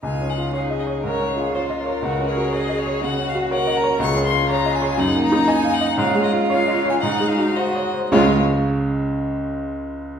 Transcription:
X:1
M:4/4
L:1/16
Q:1/4=120
K:Db
V:1 name="Violin"
a2 g2 f2 e2 d4 c2 B2- | B2 d2 e2 d2 g2 f2 g2 b2 | d'2 c'2 b2 a2 g2 b2 a2 g2 | f2 e2 f3 a g2 f2 e4 |
d2 z12 z2 |]
V:2 name="Cello"
F4 A4 B2 A2 F4 | G2 B2 A4 G4 B4 | A8 E8 | F8 E4 G2 z2 |
A,2 z12 z2 |]
V:3 name="Grand piano"
(3D,,2 D2 F2 (3d2 e2 d2 (3A,,2 D2 F2 (3d2 e2 d2 | (3D,,2 D2 G2 (3d2 e2 d2 (3D,2 D2 G2 (3d2 e2 d2 | (3D,,2 D2 F2 (3d2 e2 d2 (3G,,2 B,2 E2 (3e2 f2 e2 | (3A,,2 A,2 F2 (3d2 e2 d2 (3A,,2 A,2 G2 (3c2 d2 c2 |
[D,,D,A,Fdf]2 z12 z2 |]
V:4 name="Violin"
E8 D4 F4 | G2 A6 G8 | F8 E8 | D4 D4 E4 G2 z2 |
F2 z12 z2 |]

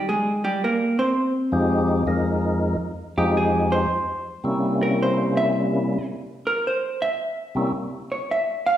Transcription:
X:1
M:4/4
L:1/8
Q:"Swing" 1/4=109
K:Fm
V:1 name="Hollow-body jazz guitar"
[A,A] [G,G] [B,B] [Cc]4- [Cc] | z3 G A c3 | z B c =e3 z B | c =e3 z d e f |]
V:2 name="Tonewheel organ" clef=bass
z4 z [F,,F,A,EG]2 [F,,F,A,EB]- | [F,,F,A,EB]2 z [F,,F,A,EG]3 z2 | [C,G,B,D=E]4- [C,G,B,DE] z3 | z3 [C,G,B,D=E] z4 |]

